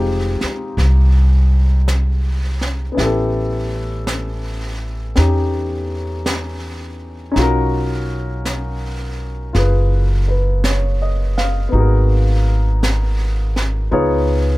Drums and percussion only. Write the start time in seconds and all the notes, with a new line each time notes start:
0.41 snare
0.78 brush sweep, snare
1.88 brush sweep, snare, hi-hat pedal
2.61 snare
2.98 brush sweep, snare
4.07 brush sweep, snare, hi-hat pedal
5.16 brush sweep, snare
6.26 brush sweep, snare, hi-hat pedal
7.36 brush sweep, snare
8.45 brush sweep, snare, hi-hat pedal
9.55 brush sweep, snare
10.64 brush sweep, snare, hi-hat pedal
11.38 snare
11.74 brush sweep
12.83 brush sweep, snare, hi-hat pedal
13.56 snare
13.92 brush sweep